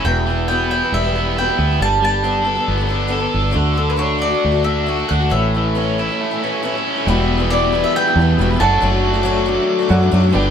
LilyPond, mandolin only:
\new Staff \with { instrumentName = "Mandolin" } { \time 4/4 \key e \dorian \tempo 4 = 137 g''4 g''8 g''8 e''4 g''4 | a''8 a''2. r8 | r8 a'16 b'16 cis''8 d''4 e''4 fis''8 | e''2. r4 |
r4 d''8. e''16 g''4. a''8~ | a''2.~ a''8 r8 | }